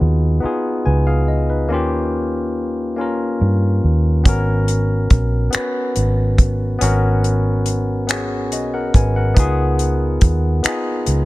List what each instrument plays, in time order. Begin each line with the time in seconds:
Already playing: tine electric piano B3 D#4 F4 F#4 G#4 D#5
0.01 fingered electric bass D#2
0.40 tine electric piano B3 D#4 F4, muted fingered electric bass stroke
0.45 tine electric piano G#4
0.86 fingered electric bass C#2, tine electric piano B4 G#5
1.07 tine electric piano G#4 F5
1.28 tine electric piano D#5
1.50 tine electric piano D#4 B4
1.69 fingered electric bass D#2, tine electric piano A#3 C#4 F4
1.74 tine electric piano G4
2.96 tine electric piano A#3 C#4 F4
3.01 tine electric piano A#4
3.41 fingered electric bass G2
3.84 fingered electric bass D#2
4.24 fingered electric bass G#1, tine electric piano B3 C#4 F#4, kick, closed hi-hat
4.29 tine electric piano A#4
4.68 closed hi-hat
5.10 fingered electric bass A#1, kick, closed hi-hat
5.51 tine electric piano B3 C#4 F#4, muted fingered electric bass stroke, closed hi-hat
5.55 tine electric piano B4, finger snap
5.96 fingered electric bass G#1, closed hi-hat
6.38 kick, closed hi-hat
6.79 fingered electric bass G#1, tine electric piano B3 C#4 F#4, closed hi-hat
6.84 tine electric piano A#4
7.24 closed hi-hat
7.66 closed hi-hat
8.07 tine electric piano B3 C#4 F#4, finger snap, closed hi-hat
8.12 tine electric piano G#4
8.52 fingered electric bass B1, tine electric piano F#4 D#5, closed hi-hat
8.74 tine electric piano A#4 F#5
8.94 fingered electric bass G#1, tine electric piano B4 G#5, kick, closed hi-hat
9.16 tine electric piano A#4 F#5
9.34 fingered electric bass C#2, tine electric piano B3 D#4 F4, kick, closed hi-hat
9.39 tine electric piano G#4
9.79 closed hi-hat
10.21 fingered electric bass D#2, kick, closed hi-hat
10.63 tine electric piano B3 D#4 F4, finger snap, muted fingered electric bass stroke, closed hi-hat
10.68 tine electric piano G#4
11.06 fingered electric bass C#2, closed hi-hat